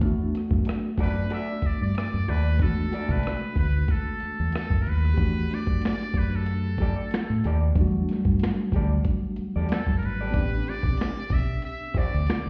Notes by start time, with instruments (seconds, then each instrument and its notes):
0.00 fingered electric bass E2, tine electric piano A3 B3 D4, kick, closed hi-hat
0.06 tine electric piano F#4
0.35 cross-stick, closed hi-hat
0.51 fingered electric bass F#2, kick
0.65 muted clean electric guitar stroke, cross-stick, closed hi-hat
0.98 fingered electric bass F#2, clean electric guitar F#4 A4 D5, kick, closed hi-hat
1.02 muted trumpet B4
1.30 clean electric guitar F#4 A4 D5, muted trumpet E5, closed hi-hat
1.62 muted fingered electric bass stroke, kick, closed hi-hat
1.67 muted trumpet D5
1.81 fingered electric bass G2, muted trumpet D5
1.95 muted trumpet D5, cross-stick, closed hi-hat
2.14 fingered electric bass F#2
2.28 fingered electric bass D#2, clean electric guitar F#4 A4 D5, muted trumpet B4, closed hi-hat
2.57 fingered electric bass E2, tine electric piano G#3 B3, kick, closed hi-hat
2.61 tine electric piano A3 D4 F#4, muted trumpet A4
2.92 clean electric guitar F#4 A4 D5, cross-stick, closed hi-hat
3.09 fingered electric bass C2, muted trumpet B4, kick
3.23 cross-stick, closed hi-hat
3.56 fingered electric bass D2, muted trumpet B4, kick, closed hi-hat
3.88 muted trumpet A4, kick, closed hi-hat
4.20 muted fingered electric bass stroke, closed hi-hat
4.40 fingered electric bass E2
4.52 muted trumpet A4, cross-stick, closed hi-hat
4.70 fingered electric bass F#2, kick
4.82 muted trumpet A#4
4.86 fingered electric bass D#2, muted trumpet B4, closed hi-hat
5.05 cross-stick
5.14 tine electric piano A3 G4, kick, closed hi-hat
5.18 fingered electric bass E2, tine electric piano D4 F#4
5.51 muted trumpet D5, snare, closed hi-hat
5.67 fingered electric bass F#2, kick
5.81 snare, closed hi-hat
5.86 muted trumpet D5, finger snap
6.14 fingered electric bass F#2, kick, closed hi-hat
6.18 muted trumpet B4
6.36 muted trumpet A4
6.46 closed hi-hat
6.78 clean electric guitar G4 A4 D5, kick, closed hi-hat
7.11 finger snap, snare, closed hi-hat
7.30 fingered electric bass A2
7.44 fingered electric bass D#2, clean electric guitar G4 A4 D5, closed hi-hat
7.73 fingered electric bass E2, tine electric piano F#3 A3, kick, closed hi-hat
7.78 tine electric piano G3 D4 F#4
8.09 snare, closed hi-hat
8.25 fingered electric bass G2, kick
8.39 snare, closed hi-hat
8.44 finger snap
8.72 fingered electric bass D2, clean electric guitar G4 A4 D5, kick, closed hi-hat
9.04 kick, closed hi-hat
9.36 muted fingered electric bass stroke, closed hi-hat
9.56 fingered electric bass E2, clean electric guitar G4 A4 D5
9.69 muted trumpet A4, finger snap, snare, closed hi-hat
9.87 fingered electric bass F#2, kick
9.98 muted trumpet A#4
10.03 fingered electric bass G#1, muted trumpet B4, closed hi-hat
10.21 clean electric guitar G4 A4 D5
10.31 tine electric piano B3 C4, kick, closed hi-hat
10.35 fingered electric bass A1, tine electric piano D4 G4
10.67 muted trumpet D5, snare, closed hi-hat
10.83 fingered electric bass B1, kick
10.97 snare, closed hi-hat
11.02 finger snap
11.30 fingered electric bass B1, muted trumpet E5, kick, closed hi-hat
11.62 muted trumpet E5, closed hi-hat
11.94 clean electric guitar G4 C5 D5, muted trumpet D5, muted fingered electric bass stroke, kick, closed hi-hat
12.14 fingered electric bass D2
12.27 finger snap, snare, closed hi-hat